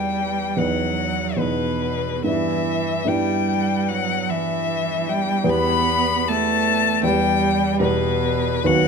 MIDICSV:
0, 0, Header, 1, 4, 480
1, 0, Start_track
1, 0, Key_signature, 1, "minor"
1, 0, Tempo, 813008
1, 828, Tempo, 873362
1, 1308, Tempo, 808625
1, 1309, Time_signature, 4, 2, 24, 8
1, 1788, Tempo, 795756
1, 3708, Tempo, 775194
1, 4668, Tempo, 842697
1, 5272, End_track
2, 0, Start_track
2, 0, Title_t, "Violin"
2, 0, Program_c, 0, 40
2, 0, Note_on_c, 0, 79, 63
2, 346, Note_on_c, 0, 78, 62
2, 355, Note_off_c, 0, 79, 0
2, 819, Note_on_c, 0, 71, 60
2, 828, Note_off_c, 0, 78, 0
2, 1299, Note_off_c, 0, 71, 0
2, 1302, Note_on_c, 0, 76, 66
2, 1787, Note_on_c, 0, 79, 69
2, 1796, Note_off_c, 0, 76, 0
2, 2271, Note_on_c, 0, 78, 69
2, 2280, Note_off_c, 0, 79, 0
2, 2522, Note_on_c, 0, 76, 69
2, 2531, Note_off_c, 0, 78, 0
2, 3001, Note_on_c, 0, 79, 68
2, 3010, Note_off_c, 0, 76, 0
2, 3245, Note_on_c, 0, 83, 83
2, 3254, Note_off_c, 0, 79, 0
2, 3718, Note_on_c, 0, 81, 81
2, 3727, Note_off_c, 0, 83, 0
2, 4186, Note_off_c, 0, 81, 0
2, 4189, Note_on_c, 0, 79, 79
2, 4658, Note_off_c, 0, 79, 0
2, 4665, Note_on_c, 0, 71, 76
2, 5148, Note_on_c, 0, 78, 85
2, 5157, Note_off_c, 0, 71, 0
2, 5272, Note_off_c, 0, 78, 0
2, 5272, End_track
3, 0, Start_track
3, 0, Title_t, "Grand piano"
3, 0, Program_c, 1, 0
3, 0, Control_c, 1, 64, 127
3, 0, Note_on_c, 1, 40, 38
3, 0, Note_on_c, 1, 59, 31
3, 0, Note_on_c, 1, 63, 32
3, 0, Note_on_c, 1, 71, 31
3, 315, Note_off_c, 1, 40, 0
3, 317, Note_off_c, 1, 59, 0
3, 317, Note_off_c, 1, 63, 0
3, 320, Note_off_c, 1, 71, 0
3, 336, Note_on_c, 1, 40, 41
3, 339, Note_on_c, 1, 59, 33
3, 340, Note_on_c, 1, 63, 32
3, 343, Note_on_c, 1, 71, 32
3, 798, Note_off_c, 1, 40, 0
3, 802, Note_off_c, 1, 59, 0
3, 802, Note_off_c, 1, 63, 0
3, 807, Note_off_c, 1, 71, 0
3, 807, Note_on_c, 1, 40, 40
3, 810, Note_on_c, 1, 59, 29
3, 811, Note_on_c, 1, 63, 31
3, 816, Note_on_c, 1, 71, 32
3, 1280, Note_off_c, 1, 59, 0
3, 1284, Note_off_c, 1, 40, 0
3, 1286, Note_off_c, 1, 63, 0
3, 1287, Note_off_c, 1, 71, 0
3, 1288, Note_on_c, 1, 59, 34
3, 1289, Note_on_c, 1, 43, 41
3, 1289, Note_on_c, 1, 64, 35
3, 1295, Note_on_c, 1, 71, 35
3, 1319, Control_c, 1, 64, 0
3, 1413, Control_c, 1, 64, 127
3, 1759, Note_off_c, 1, 43, 0
3, 1762, Note_off_c, 1, 59, 0
3, 1764, Note_off_c, 1, 64, 0
3, 1767, Note_off_c, 1, 71, 0
3, 1768, Note_on_c, 1, 43, 42
3, 1771, Note_on_c, 1, 59, 32
3, 1775, Note_on_c, 1, 64, 32
3, 1779, Note_on_c, 1, 71, 34
3, 3195, Note_off_c, 1, 43, 0
3, 3197, Note_off_c, 1, 59, 0
3, 3199, Note_off_c, 1, 64, 0
3, 3200, Note_off_c, 1, 71, 0
3, 3210, Note_on_c, 1, 59, 40
3, 3211, Note_on_c, 1, 40, 48
3, 3217, Note_on_c, 1, 67, 40
3, 3217, Note_on_c, 1, 71, 39
3, 3241, Control_c, 1, 64, 0
3, 3328, Control_c, 1, 64, 127
3, 4156, Note_off_c, 1, 59, 0
3, 4157, Note_off_c, 1, 40, 0
3, 4160, Note_off_c, 1, 67, 0
3, 4160, Note_off_c, 1, 71, 0
3, 4182, Note_on_c, 1, 40, 50
3, 4183, Note_on_c, 1, 59, 42
3, 4186, Note_on_c, 1, 67, 39
3, 4189, Note_on_c, 1, 71, 40
3, 4648, Note_off_c, 1, 40, 0
3, 4650, Note_off_c, 1, 59, 0
3, 4651, Note_off_c, 1, 67, 0
3, 4653, Note_off_c, 1, 71, 0
3, 4658, Note_on_c, 1, 40, 48
3, 4660, Note_on_c, 1, 67, 42
3, 4663, Note_on_c, 1, 59, 38
3, 4667, Note_on_c, 1, 71, 39
3, 5128, Note_off_c, 1, 40, 0
3, 5129, Note_off_c, 1, 67, 0
3, 5130, Note_off_c, 1, 59, 0
3, 5133, Note_off_c, 1, 71, 0
3, 5138, Note_on_c, 1, 39, 55
3, 5142, Note_on_c, 1, 59, 45
3, 5145, Note_on_c, 1, 66, 44
3, 5147, Note_on_c, 1, 71, 44
3, 5159, Control_c, 1, 64, 0
3, 5251, Control_c, 1, 64, 127
3, 5272, Note_off_c, 1, 39, 0
3, 5272, Note_off_c, 1, 59, 0
3, 5272, Note_off_c, 1, 66, 0
3, 5272, Note_off_c, 1, 71, 0
3, 5272, End_track
4, 0, Start_track
4, 0, Title_t, "Cello"
4, 0, Program_c, 2, 42
4, 0, Note_on_c, 2, 55, 54
4, 348, Note_on_c, 2, 54, 53
4, 357, Note_off_c, 2, 55, 0
4, 831, Note_on_c, 2, 47, 55
4, 839, Note_off_c, 2, 54, 0
4, 1310, Note_off_c, 2, 47, 0
4, 1315, Note_on_c, 2, 52, 60
4, 1783, Note_off_c, 2, 52, 0
4, 1789, Note_on_c, 2, 55, 59
4, 2274, Note_on_c, 2, 54, 55
4, 2283, Note_off_c, 2, 55, 0
4, 2515, Note_on_c, 2, 52, 57
4, 2524, Note_off_c, 2, 54, 0
4, 2992, Note_on_c, 2, 55, 62
4, 3001, Note_off_c, 2, 52, 0
4, 3232, Note_off_c, 2, 55, 0
4, 3238, Note_on_c, 2, 59, 73
4, 3722, Note_on_c, 2, 57, 66
4, 3731, Note_off_c, 2, 59, 0
4, 4196, Note_on_c, 2, 55, 68
4, 4205, Note_off_c, 2, 57, 0
4, 4669, Note_on_c, 2, 47, 69
4, 4678, Note_off_c, 2, 55, 0
4, 5146, Note_off_c, 2, 47, 0
4, 5150, Note_on_c, 2, 54, 81
4, 5272, Note_off_c, 2, 54, 0
4, 5272, End_track
0, 0, End_of_file